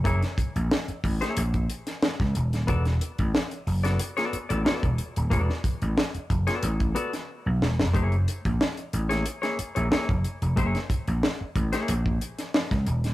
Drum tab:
HH |xxxx-xoxxxxx-xxx|xxxx-xoxxxxx-xxx|x-xx-xxxxxxx----|xxxx-xxxxxxx-xxx|
SD |-o--o--o---ooo-o|-o--o--o-o--o---|-o--o--o---o--oo|----o--o-o--o---|
BD |o-o---o--o---o--|o--o---------o--|o-o---o--o------|o--o---------o--|

HH |xxxx--xxx-xx-xxx|
SD |-o--o--o---ooo-o|
BD |o-o---o--o---o--|